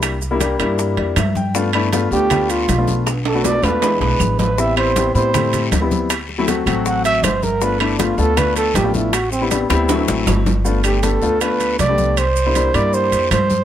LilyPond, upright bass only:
\new Staff \with { instrumentName = "Upright bass" } { \clef bass \time 4/4 \key g \mixolydian \tempo 4 = 158 c,4. g,4 f,8 g,4~ | g,4. d,4. b,,4~ | b,,4. e,4 b,,8 a,,4~ | a,,4. a,4. d,4~ |
d,4. a,,4. g,,4~ | g,,4. d,4. a,,4~ | a,,4. d,4 a,,8 g,,4~ | g,,4. d,4. c,4~ |
c,4. g,4 f,8 g,4 | }